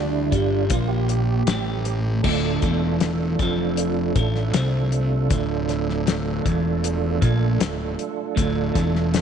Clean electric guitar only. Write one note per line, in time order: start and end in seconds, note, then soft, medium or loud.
0.00 0.30 D3 loud
0.32 0.69 G2 medium
0.70 1.45 A#2 loud
1.47 2.22 A2 loud
2.24 2.61 D2 loud
2.63 3.37 E2 medium
3.39 4.14 F2 medium
4.16 4.52 A2 medium
4.54 5.29 C3 loud
5.30 6.43 D2 loud
6.44 7.20 E2 medium
7.21 7.58 A#2 loud
7.59 7.90 D2 medium
8.36 8.73 D2 loud
8.74 9.21 E2 medium